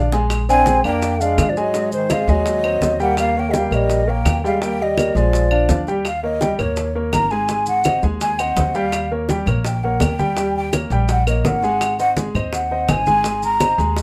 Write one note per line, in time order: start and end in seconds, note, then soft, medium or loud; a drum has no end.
0.00 0.79 A#1 medium
0.00 0.12 G#3 medium
0.00 0.12 F5 loud
0.12 0.42 G#3 medium
0.12 0.43 G#4 medium
0.12 0.43 G#5 medium
0.12 low bongo medium
0.12 high conga soft
0.12 maracas soft
0.30 high bongo medium
0.30 high conga soft
0.30 claves medium
0.30 maracas medium
0.49 0.82 C4 medium
0.49 0.64 D4 medium
0.49 0.64 D5 medium
0.49 0.64 F5 medium
0.49 0.82 G#5 loud
0.49 high conga soft
0.49 maracas medium
0.66 0.81 G#3 medium
0.66 0.81 G#4 medium
0.66 0.81 G#5 medium
0.66 high bongo medium
0.66 high conga medium
0.66 maracas medium
0.84 1.34 F2 medium
0.84 1.23 A#3 medium
0.84 1.14 D4 medium
0.84 1.14 D5 medium
0.84 1.14 F5 medium
0.84 1.22 G5 loud
0.84 high conga soft
0.84 claves medium
0.84 maracas soft
1.02 high bongo medium
1.02 high conga soft
1.02 maracas medium
1.21 1.52 G#3 medium
1.21 1.50 D4 medium
1.21 1.50 D5 medium
1.21 1.51 F5 medium
1.21 high conga soft
1.21 maracas medium
1.38 2.22 G#2 medium
1.38 high bongo medium
1.38 low bongo medium
1.38 high conga medium
1.38 claves medium
1.38 maracas medium
1.49 1.59 F3 medium
1.49 1.59 D5 medium
1.57 1.93 F#3 medium
1.57 1.71 G#3 medium
1.57 1.72 G#4 medium
1.57 1.92 D#5 medium
1.57 1.72 G#5 medium
1.57 maracas soft
1.74 2.04 G#3 medium
1.74 2.04 G#4 medium
1.74 2.04 G#5 medium
1.74 high bongo medium
1.74 high conga soft
1.74 maracas medium
1.92 2.13 D#3 medium
1.92 2.13 C5 medium
1.92 high conga soft
1.92 maracas medium
2.10 2.32 G#3 medium
2.10 2.25 C4 medium
2.10 2.25 C5 medium
2.10 2.26 D#5 medium
2.10 2.31 F5 medium
2.10 high bongo medium
2.10 high conga medium
2.10 claves medium
2.10 maracas medium
2.27 2.78 D#2 medium
2.27 3.01 F#3 medium
2.27 2.58 G#3 medium
2.27 2.58 G#4 medium
2.27 3.01 D#5 medium
2.27 2.58 G#5 medium
2.27 high bongo soft
2.27 high conga soft
2.27 maracas soft
2.46 high bongo medium
2.46 high conga soft
2.46 maracas medium
2.64 2.79 C4 medium
2.64 2.79 C5 medium
2.64 2.79 D#5 medium
2.64 high bongo soft
2.64 high conga soft
2.64 claves medium
2.81 3.66 D#2 medium
2.81 2.97 C4 medium
2.81 2.97 C5 medium
2.81 2.97 D#5 medium
2.81 high bongo medium
2.81 low bongo medium
2.81 high conga medium
2.81 maracas medium
2.99 3.29 G3 medium
2.99 3.18 A#3 medium
2.99 3.29 G4 medium
2.99 3.18 F#5 medium
2.99 3.30 G5 medium
2.99 high bongo soft
2.99 high conga soft
2.99 maracas soft
3.17 3.38 A#3 medium
3.17 3.41 F5 medium
3.17 high bongo medium
3.17 high conga soft
3.17 claves medium
3.17 maracas medium
3.35 3.51 A#3 medium
3.35 3.51 A#4 medium
3.35 3.51 C#5 medium
3.35 high conga soft
3.39 3.53 G5 loud
3.50 3.56 G3 medium
3.50 3.59 D#5 medium
3.50 high bongo medium
3.50 high conga medium
3.54 3.69 G3 medium
3.54 3.75 A#3 medium
3.54 3.69 G4 medium
3.54 3.76 F5 medium
3.54 3.69 G5 medium
3.54 maracas medium
3.71 4.21 A#1 medium
3.71 4.11 G3 medium
3.71 4.01 A#3 medium
3.71 4.01 A#4 medium
3.71 4.02 C#5 medium
3.71 4.11 D#5 medium
3.71 high conga soft
3.71 claves medium
3.71 maracas soft
3.90 high bongo medium
3.90 high conga soft
3.90 maracas medium
4.07 4.37 A#3 medium
4.07 4.44 A#3 medium
4.07 4.37 A#4 medium
4.07 4.37 C#5 medium
4.07 4.45 G5 medium
4.07 high conga soft
4.25 5.09 D#2 medium
4.25 high bongo medium
4.25 low bongo medium
4.25 high conga medium
4.25 claves medium
4.25 maracas medium
4.44 4.59 G3 medium
4.44 4.61 G#3 medium
4.44 4.59 G4 medium
4.44 4.62 F5 medium
4.44 4.59 G5 medium
4.44 maracas soft
4.61 4.91 G3 medium
4.61 4.84 A#3 medium
4.61 4.91 G4 medium
4.61 4.91 G5 medium
4.61 4.84 G5 medium
4.61 high bongo medium
4.61 high conga soft
4.61 maracas medium
4.79 5.18 G3 medium
4.79 5.19 D#5 medium
4.79 high conga soft
4.97 5.13 A#3 medium
4.97 5.13 A#4 medium
4.97 5.13 C#5 medium
4.97 high bongo medium
4.97 high conga medium
4.97 claves medium
4.97 maracas medium
5.15 5.65 A#1 medium
5.15 5.88 F3 medium
5.15 5.45 G#3 medium
5.15 5.46 G#4 medium
5.15 5.88 D5 medium
5.15 5.46 G#5 medium
5.15 high bongo soft
5.15 high conga soft
5.15 maracas soft
5.33 high bongo medium
5.33 high conga soft
5.33 maracas medium
5.51 5.66 D4 medium
5.51 5.66 D5 medium
5.51 5.67 F5 medium
5.51 high bongo soft
5.51 high conga soft
5.51 claves medium
5.69 6.53 D#2 medium
5.69 5.85 D4 medium
5.69 5.84 D5 medium
5.69 5.85 F5 medium
5.69 high bongo medium
5.69 low bongo medium
5.69 high conga medium
5.69 maracas medium
5.87 6.03 G3 medium
5.87 6.03 G4 medium
5.87 6.03 G5 medium
5.87 high bongo soft
5.87 high conga soft
5.87 maracas soft
6.05 6.23 F5 medium
6.05 high bongo medium
6.05 high conga soft
6.05 claves medium
6.05 maracas medium
6.23 6.38 A#3 medium
6.23 6.38 A#4 medium
6.23 6.38 C#5 medium
6.23 6.57 D#5 medium
6.23 high conga soft
6.41 6.56 G3 medium
6.41 6.56 G4 medium
6.41 6.56 G5 medium
6.41 high bongo medium
6.41 high conga medium
6.41 maracas medium
6.58 7.09 D#2 medium
6.58 6.88 A#3 medium
6.58 6.89 A#4 medium
6.58 6.93 C#5 medium
6.58 6.89 C#5 medium
6.58 high conga soft
6.58 low conga medium
6.58 claves medium
6.58 maracas soft
6.76 high bongo medium
6.76 high conga soft
6.76 maracas medium
6.95 7.25 A#3 medium
6.95 7.25 A#4 medium
6.95 7.25 C#5 medium
6.95 high conga soft
7.13 7.97 G#1 medium
7.13 7.32 A#5 loud
7.13 high bongo medium
7.13 low bongo medium
7.13 high conga medium
7.13 claves medium
7.13 maracas medium
7.30 7.46 G#3 medium
7.30 7.46 G#4 medium
7.30 7.67 G#5 medium
7.30 7.47 G#5 medium
7.30 maracas soft
7.49 7.79 G#3 medium
7.49 7.79 G#4 medium
7.49 7.79 G#5 medium
7.49 high bongo medium
7.49 high conga soft
7.49 maracas medium
7.66 8.01 F#5 loud
7.66 high conga soft
7.66 maracas medium
7.84 8.00 C4 medium
7.84 8.00 C5 medium
7.84 8.00 D#5 medium
7.84 high bongo medium
7.84 high conga loud
7.84 claves medium
7.84 maracas medium
8.03 8.53 D#2 medium
8.03 8.33 G#3 medium
8.03 8.33 G#4 medium
8.03 8.33 G#5 medium
8.03 high bongo soft
8.03 high conga soft
8.03 maracas soft
8.21 8.41 G#5 medium
8.21 high bongo medium
8.21 high conga soft
8.21 maracas medium
8.39 8.54 C4 medium
8.39 8.54 C5 medium
8.39 8.54 D#5 medium
8.39 8.76 F#5 medium
8.39 high bongo soft
8.39 high conga soft
8.39 claves medium
8.39 maracas medium
8.56 9.41 D#2 medium
8.56 8.71 C4 medium
8.56 8.72 C5 medium
8.56 8.72 D#5 medium
8.56 high bongo medium
8.56 low bongo medium
8.56 high conga medium
8.56 maracas medium
8.74 9.05 G3 medium
8.74 9.05 G4 medium
8.74 9.11 F5 medium
8.74 9.05 G5 medium
8.74 high bongo soft
8.74 high conga soft
8.74 maracas soft
8.92 high bongo medium
8.92 high conga soft
8.92 claves medium
8.92 maracas medium
9.11 9.26 A#3 medium
9.11 9.26 A#4 medium
9.11 9.27 C#5 medium
9.11 high conga soft
9.29 9.44 G3 medium
9.29 9.45 G4 medium
9.29 9.45 G5 medium
9.29 high bongo medium
9.29 high conga loud
9.29 maracas medium
9.46 9.97 A#1 medium
9.46 9.77 A#3 medium
9.46 9.77 A#4 medium
9.46 9.77 C#5 medium
9.46 high conga soft
9.46 low conga medium
9.46 claves medium
9.46 maracas soft
9.65 9.85 G5 medium
9.65 high bongo medium
9.65 high conga soft
9.65 maracas medium
9.83 10.13 A#3 medium
9.83 10.13 A#4 medium
9.83 10.14 C#5 medium
9.83 10.03 F#5 medium
9.83 high conga soft
10.00 10.85 D#2 medium
10.00 10.55 G5 loud
10.00 high bongo medium
10.00 low bongo medium
10.00 high conga medium
10.00 claves medium
10.00 maracas medium
10.19 10.34 G3 medium
10.19 10.34 G4 medium
10.19 10.34 G5 medium
10.19 high conga medium
10.19 maracas soft
10.37 10.67 G3 medium
10.37 10.67 G4 medium
10.37 10.67 G5 medium
10.37 high bongo medium
10.37 high conga soft
10.37 maracas medium
10.56 10.73 G5 medium
10.56 high conga soft
10.73 10.88 A#3 medium
10.73 10.89 A#4 medium
10.73 10.89 C#5 medium
10.73 high bongo medium
10.73 high conga medium
10.73 claves medium
10.73 maracas medium
10.90 11.41 A#1 medium
10.90 11.21 G3 medium
10.90 11.21 G4 medium
10.90 11.21 G5 medium
10.90 high bongo soft
10.90 high conga soft
10.90 maracas soft
11.08 11.27 F#5 medium
11.08 high bongo medium
11.08 high conga soft
11.08 maracas medium
11.27 11.42 A#3 medium
11.27 11.42 A#4 medium
11.27 11.42 C#5 medium
11.27 11.47 D#5 medium
11.27 high bongo soft
11.27 high conga soft
11.27 claves medium
11.27 maracas medium
11.44 12.29 G#1 medium
11.44 11.60 A#3 medium
11.44 11.60 A#4 medium
11.44 11.60 C#5 medium
11.44 11.99 F#5 medium
11.44 high bongo medium
11.44 low bongo medium
11.44 high conga medium
11.44 maracas medium
11.62 11.93 G#3 medium
11.62 11.93 G#4 medium
11.62 11.93 G#5 medium
11.62 high bongo soft
11.62 high conga soft
11.62 maracas soft
11.81 high bongo medium
11.81 high conga soft
11.81 claves medium
11.81 maracas medium
11.99 12.14 C4 medium
11.99 12.14 C5 medium
11.99 12.14 D#5 medium
11.99 12.10 F#5 loud
11.99 high conga soft
11.99 maracas medium
12.17 12.32 G#3 medium
12.17 12.32 G#4 medium
12.17 12.32 G#5 medium
12.17 high bongo medium
12.17 high conga loud
12.17 maracas medium
12.35 12.85 D#2 medium
12.35 12.65 C4 medium
12.35 12.65 C5 medium
12.35 12.65 D#5 medium
12.35 high conga soft
12.35 low conga medium
12.35 claves medium
12.35 maracas soft
12.53 12.92 F#5 medium
12.53 high bongo medium
12.53 high conga soft
12.53 maracas medium
12.71 13.01 C4 medium
12.71 13.01 C5 medium
12.71 13.01 D#5 medium
12.71 high conga soft
12.89 13.73 G#1 medium
12.89 13.43 G#5 loud
12.89 high bongo medium
12.89 low bongo medium
12.89 high conga medium
12.89 claves medium
12.89 maracas medium
13.06 13.22 G#3 medium
13.06 13.22 G#4 medium
13.06 13.22 G#5 medium
13.06 high conga medium
13.06 maracas soft
13.24 13.55 G#3 medium
13.24 13.55 G#4 medium
13.24 13.55 G#5 medium
13.24 high bongo medium
13.24 high conga soft
13.24 maracas medium
13.42 13.94 A#5 loud
13.42 high conga soft
13.42 maracas medium
13.60 13.76 C4 medium
13.60 13.76 C5 medium
13.60 13.76 D#5 medium
13.60 high bongo medium
13.60 high conga loud
13.60 claves medium
13.60 maracas medium
13.78 14.02 D#2 loud
13.78 14.02 G#3 medium
13.78 14.02 G#4 medium
13.78 14.02 G#5 medium
13.78 high bongo soft
13.78 high conga soft
13.78 maracas soft
13.97 high bongo medium
13.97 high conga soft
13.97 maracas medium